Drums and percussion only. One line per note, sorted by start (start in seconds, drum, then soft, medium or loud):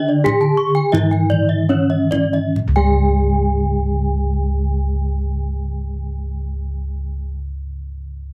0.26 kendang high medium
0.26 kendang low medium
0.42 kendang slap soft
0.76 kendang slap soft
0.94 kendang slap soft
0.94 kendang high medium
0.94 kendang low medium
1.13 kendang slap soft
1.31 kendang low medium
1.70 kendang slap soft
2.12 kendang slap soft
2.12 kendang high medium
2.12 kendang low medium
2.34 kendang slap soft
2.56 kendang low medium